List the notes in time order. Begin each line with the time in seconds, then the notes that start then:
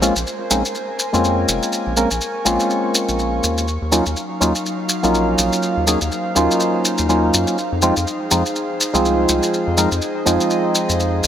Already playing: A#1 A#4 C5 G#5
0.02 G#3 A#3 C4 C#4 F4, maracas
0.16 A#1, maracas
0.27 maracas
0.50 A#1 G#3 A#3 C4 C#4 D#4, maracas
0.65 maracas
0.75 maracas
0.99 maracas
1.13 F2 G#3 A#3 C4 C#4 F4, maracas
1.25 maracas
1.48 F1, maracas
1.63 maracas
1.73 C#6, maracas
1.87 A#1
1.97 G#3 A#3 C4 C#4 A#4, maracas
2.11 A#1, maracas
2.21 maracas
2.45 A#1 G#3 A#3 C4 C#4 F4, maracas
2.60 maracas
2.70 maracas
2.95 maracas
3.09 A#1, maracas
3.19 maracas
3.43 D#2, maracas
3.58 maracas
3.67 F#3 D#4 F5, maracas
3.82 D#2
3.92 F#3 A#3 C#4 D#4 F4, maracas
4.06 D#2, maracas
4.16 maracas
4.41 D#2 F#3 A#3 C#4 D#4 F4, maracas
4.55 maracas
4.66 maracas
4.89 maracas
5.03 A#1 F#3 A#3 C#4 D#4 F4, maracas
5.14 maracas
5.38 A#1, maracas
5.53 maracas
5.63 C5, maracas
5.77 D#2
5.87 F#3 A#3 C#4 D#4 G#4, maracas
6.01 D#2, maracas
6.12 maracas
6.35 D#2 F#3 A#3 C#4 D#4 F4, maracas
6.51 maracas
6.60 maracas
6.85 maracas
6.98 D#2, maracas
7.09 F#3 A#3 C#4 D#4 F4, maracas
7.34 F#2, maracas
7.47 maracas
7.58 G#4 C5, maracas
7.72 F2
7.82 F3 G#3 C4 D#4 F4, maracas
7.96 F2, maracas
8.07 maracas
8.31 F2 F3 G#3 C4 D#4 F4, maracas
8.46 maracas
8.56 maracas
8.81 maracas
8.93 C2 F3 G#3 C4 D#4 F4, maracas
9.05 maracas
9.29 C2, maracas
9.43 maracas
9.53 D#5, maracas
9.67 F2
9.77 F3 G#3 C4 D#4 A#4, maracas
9.91 F2, maracas
10.02 maracas
10.25 F2 F3 G#3 C4 D#4 F4, maracas
10.40 maracas
10.50 maracas
10.75 maracas
10.89 F2, maracas
11.00 maracas
11.24 C#2, maracas